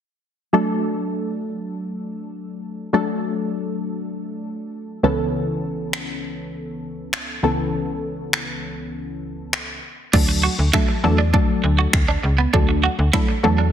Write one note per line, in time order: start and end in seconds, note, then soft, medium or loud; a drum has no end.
0.53 2.89 F#3 medium
0.53 2.89 A3 medium
0.53 2.90 D4 medium
0.53 2.90 A4 medium
2.93 4.99 F#3 medium
2.93 5.00 A3 medium
2.93 5.00 D4 medium
2.93 5.00 A4 medium
5.03 7.39 C#2 medium
5.03 7.39 E3 medium
5.03 7.40 B3 medium
5.03 7.40 C#4 medium
5.03 7.40 A4 medium
5.93 finger snap loud
7.13 finger snap loud
7.43 9.79 C#2 medium
7.43 9.79 E3 medium
7.43 9.79 B3 medium
7.43 9.80 C#4 medium
7.43 9.80 A4 medium
8.33 finger snap medium
9.53 finger snap loud
10.13 10.48 D2 loud
10.13 10.47 F#3 medium
10.13 10.47 A3 medium
10.13 10.25 D4 medium
10.13 10.48 D4 medium
10.13 10.48 A4 medium
10.13 kick loud
10.13 crash medium
10.29 muted clean electric guitar stroke soft
10.43 10.55 F#4 medium
10.59 10.70 D2 medium
10.73 10.91 F#3 medium
10.73 10.91 A3 medium
10.73 10.91 D4 medium
10.73 10.85 E4 medium
10.73 10.91 A4 loud
10.73 finger snap loud
10.73 kick loud
10.89 muted clean electric guitar stroke soft
11.04 11.38 E2 medium
11.04 11.20 F#3 medium
11.04 11.21 A3 medium
11.04 11.21 D4 medium
11.04 11.21 A4 loud
11.18 11.30 D4 medium
11.34 12.01 F#3 medium
11.34 12.01 A3 medium
11.34 11.45 D4 medium
11.34 12.01 D4 medium
11.34 12.02 A4 loud
11.34 kick loud
11.64 11.87 D2 medium
11.64 muted clean electric guitar stroke soft
11.79 11.90 F#4 medium
11.93 12.16 D2 medium
11.93 finger snap loud
11.93 kick loud
12.08 12.20 D4 medium
12.23 12.47 C#2 medium
12.23 muted clean electric guitar stroke soft
12.38 12.50 B3 medium
12.53 12.88 D2 loud
12.53 12.87 F#3 medium
12.53 12.87 A3 medium
12.53 12.65 D4 medium
12.53 12.88 D4 medium
12.53 12.88 A4 medium
12.53 kick loud
12.69 muted clean electric guitar stroke soft
12.84 12.95 F#4 medium
12.99 13.10 D2 medium
13.13 13.30 F#3 medium
13.13 13.30 A3 medium
13.13 13.31 D4 medium
13.13 13.25 E4 medium
13.13 13.31 A4 medium
13.13 finger snap medium
13.13 kick loud
13.29 muted clean electric guitar stroke soft
13.43 13.72 E2 loud
13.43 13.60 F#3 loud
13.43 13.60 A3 medium
13.43 13.61 D4 medium
13.43 13.61 A4 loud
13.58 13.70 D4 medium